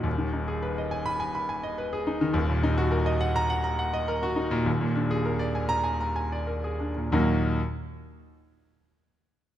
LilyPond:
\new Staff \with { instrumentName = "Grand piano" } { \time 4/4 \key ees \minor \tempo 4 = 102 << { r4. r16 ces'''8 r4. r16 | r4. r16 bes''8 r4. r16 | r4. r16 bes''8 r4. r16 | <ees, bes, ges bes ees' ges'>8 r2. r8 | } \\ { <ees,, ees,>16 ees16 ees'16 aes'16 ces''16 ees''16 aes''8 aes''16 ces'''16 aes''16 ees''16 ces''16 aes'16 ees'16 ees16 | <ees,, ees,>16 bes,16 ees'16 ges'16 bes'16 ees''16 ges''8 ges''16 bes''16 ges''16 ees''16 bes'16 ges'16 ees'16 bes,16 | <ees,, ees,>16 bes,16 d'16 aes'16 bes'16 d''16 aes''8 aes''16 bes''16 aes''16 d''16 bes'16 aes'16 d'16 bes,16 | r1 | } >> }